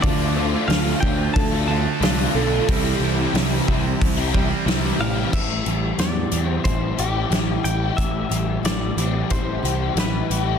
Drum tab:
CC |--------|--------|x-------|--------|
HH |o-o-o-o-|o-o-o-o-|-xxxxxxx|xxxxxxxx|
SD |--o---o-|--o---o-|--o---o-|--o---o-|
BD |o--oo---|o--ooo--|o---o---|o---o---|